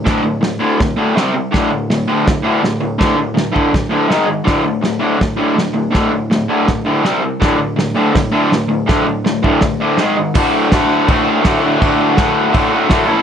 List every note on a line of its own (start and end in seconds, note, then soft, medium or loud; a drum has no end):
0.05 0.22 D2 medium
0.05 0.23 A2 medium
0.05 0.23 D3 loud
0.05 kick loud
0.05 snare loud
0.05 open hi-hat medium
0.24 0.40 D2 medium
0.24 0.40 A2 medium
0.41 0.58 D2 medium
0.41 0.58 A2 medium
0.41 snare loud
0.41 open hi-hat medium
0.59 0.77 D2 medium
0.59 0.78 A2 medium
0.59 0.78 D3 medium
0.79 0.96 D2 medium
0.79 0.96 A2 medium
0.79 kick loud
0.79 snare loud
0.79 open hi-hat medium
0.97 1.14 D2 medium
0.97 1.15 A2 medium
0.97 1.15 D3 medium
1.15 1.33 C3 medium
1.15 1.33 G3 loud
1.15 1.34 C4 loud
1.15 snare loud
1.15 open hi-hat medium
1.34 1.51 C3 medium
1.34 1.51 G3 medium
1.51 1.69 D2 medium
1.51 1.70 A2 medium
1.51 1.70 D3 medium
1.51 kick loud
1.51 snare loud
1.51 open hi-hat medium
1.71 1.88 D2 medium
1.71 1.88 A2 medium
1.90 2.06 D2 medium
1.90 2.07 A2 medium
1.90 snare loud
1.90 open hi-hat medium
2.08 2.25 D2 medium
2.08 2.25 A2 medium
2.08 2.25 D3 medium
2.26 2.42 D2 medium
2.26 2.43 A2 medium
2.26 kick loud
2.26 snare loud
2.26 open hi-hat medium
2.43 2.60 D2 medium
2.43 2.61 A2 loud
2.43 2.62 D3 loud
2.62 2.79 D2 medium
2.62 2.80 A2 medium
2.62 snare loud
2.62 open hi-hat medium
2.81 2.97 D2 medium
2.81 2.97 A2 medium
2.98 3.15 D2 medium
2.98 3.15 A2 medium
2.98 3.17 D3 loud
2.98 kick loud
2.98 snare loud
2.98 open hi-hat medium
3.16 3.33 D2 medium
3.16 3.34 A2 medium
3.34 3.51 D2 medium
3.34 3.51 A2 medium
3.34 snare loud
3.34 open hi-hat medium
3.52 3.70 D2 medium
3.52 3.70 A2 medium
3.52 3.72 D3 loud
3.52 kick medium
3.71 3.89 D2 medium
3.71 3.89 A2 medium
3.71 kick loud
3.71 snare loud
3.75 open hi-hat medium
3.90 4.08 D2 medium
3.90 4.09 A2 medium
3.90 4.09 D3 medium
4.09 4.25 G#2 medium
4.09 4.25 D#3 loud
4.09 4.28 G#3 medium
4.09 snare loud
4.09 open hi-hat medium
4.26 4.44 G#2 medium
4.26 4.44 D#3 medium
4.44 4.63 D2 medium
4.44 4.63 A2 medium
4.44 4.63 D3 medium
4.44 kick loud
4.44 snare loud
4.44 open hi-hat medium
4.64 4.80 D2 medium
4.64 4.81 A2 medium
4.81 4.98 D2 medium
4.81 4.99 A2 medium
4.81 snare loud
4.81 open hi-hat medium
4.99 5.16 D2 medium
4.99 5.17 A2 medium
4.99 5.19 D3 medium
5.18 5.36 D2 medium
5.18 5.36 A2 medium
5.18 kick loud
5.18 snare loud
5.18 open hi-hat medium
5.37 5.53 D2 loud
5.37 5.54 A2 medium
5.37 5.56 D3 medium
5.55 5.72 D2 medium
5.55 5.73 A2 medium
5.55 snare loud
5.55 open hi-hat medium
5.74 5.90 D2 medium
5.74 5.91 A2 medium
5.91 6.10 D2 medium
5.91 6.10 A2 loud
5.91 6.11 D3 loud
5.91 kick loud
5.91 snare loud
5.91 open hi-hat medium
6.12 6.29 D2 medium
6.12 6.29 A2 medium
6.30 6.47 D2 medium
6.30 6.48 A2 medium
6.30 snare loud
6.30 open hi-hat medium
6.48 6.65 D2 medium
6.48 6.66 A2 medium
6.48 6.67 D3 medium
6.66 6.84 D2 medium
6.66 6.84 A2 medium
6.66 kick loud
6.66 snare loud
6.66 open hi-hat medium
6.85 7.03 D2 medium
6.85 7.04 A2 loud
6.85 7.04 D3 loud
7.04 7.20 C3 loud
7.04 7.20 G3 loud
7.04 7.22 C4 loud
7.04 snare loud
7.04 open hi-hat medium
7.21 7.39 C3 medium
7.21 7.39 G3 medium
7.40 7.57 D2 medium
7.40 7.57 A2 loud
7.40 7.59 D3 loud
7.40 kick loud
7.40 snare loud
7.40 open hi-hat medium
7.58 7.75 D2 medium
7.58 7.75 A2 medium
7.76 7.93 D2 medium
7.76 7.94 A2 medium
7.76 snare loud
7.76 open hi-hat medium
7.94 8.12 D2 medium
7.94 8.12 A2 medium
7.94 8.14 D3 loud
8.13 8.30 D2 medium
8.13 8.31 A2 medium
8.13 kick loud
8.13 snare loud
8.13 open hi-hat medium
8.31 8.48 D2 loud
8.31 8.49 A2 medium
8.31 8.50 D3 loud
8.49 8.67 D2 medium
8.49 8.68 A2 medium
8.49 snare loud
8.49 open hi-hat medium
8.68 8.85 D2 medium
8.68 8.86 A2 medium
8.86 9.04 D2 medium
8.86 9.04 A2 medium
8.86 9.06 D3 loud
8.86 kick loud
8.86 snare loud
8.86 open hi-hat medium
9.05 9.23 D2 medium
9.05 9.23 A2 medium
9.25 9.42 D2 medium
9.25 9.42 A2 medium
9.25 snare loud
9.25 open hi-hat medium
9.43 9.61 D2 medium
9.43 9.61 A2 medium
9.43 9.61 D3 medium
9.43 kick medium
9.61 9.79 D2 medium
9.61 9.79 A2 medium
9.61 kick loud
9.61 snare loud
9.61 open hi-hat medium
9.80 9.98 D2 medium
9.80 9.98 A2 medium
9.80 9.99 D3 loud
9.98 10.16 G#2 medium
9.98 10.16 D#3 loud
9.98 10.17 G#3 medium
9.98 snare loud
9.98 open hi-hat medium
10.17 10.34 G#2 medium
10.17 10.34 D#3 medium
10.34 11.41 D2 loud
10.34 10.69 A2 loud
10.34 10.72 D3 loud
10.34 10.73 A3 loud
10.34 10.73 F#4 loud
10.34 kick loud
10.34 crash loud
10.34 crash medium
10.70 11.06 A2 medium
10.70 11.08 D3 medium
10.70 11.09 A3 medium
10.70 11.10 F#4 medium
10.70 kick loud
10.70 snare loud
10.70 crash medium
11.07 11.41 A2 medium
11.07 11.26 D3 medium
11.07 11.26 A3 medium
11.07 11.23 F#4 medium
11.07 kick loud
11.07 crash medium
11.24 11.42 D3 medium
11.24 11.44 A3 medium
11.24 11.43 F#4 medium
11.41 11.77 D2 loud
11.41 11.78 A2 medium
11.41 11.61 D3 loud
11.41 11.61 A3 loud
11.41 11.59 F#4 loud
11.41 kick loud
11.41 snare loud
11.41 crash medium
11.60 11.79 D3 medium
11.60 11.81 A3 medium
11.60 11.80 F#4 medium
11.78 12.35 D2 loud
11.78 12.15 A2 loud
11.78 12.16 D3 loud
11.78 12.18 A3 loud
11.78 12.17 F#4 loud
11.78 kick loud
11.78 crash medium
12.17 12.49 A2 medium
12.17 12.51 D3 medium
12.17 12.51 A3 medium
12.17 12.53 F#4 medium
12.17 kick loud
12.17 snare loud
12.17 crash medium
12.51 12.87 A2 medium
12.51 12.73 D3 medium
12.51 12.71 A3 medium
12.51 12.69 F#4 medium
12.51 crash medium
12.55 kick loud
12.70 12.88 D3 medium
12.70 12.88 A3 medium
12.70 12.89 F#4 medium
12.88 13.06 D2 loud
12.88 13.06 A2 medium
12.88 13.07 D3 loud
12.88 13.06 A3 loud
12.88 13.05 F#4 loud
12.88 kick loud
12.88 snare loud
12.88 crash medium
13.06 13.22 A2 medium
13.06 13.22 E3 medium
13.06 13.22 A3 medium
13.06 13.22 C#4 medium
13.06 13.22 E4 loud
13.06 13.22 A4 loud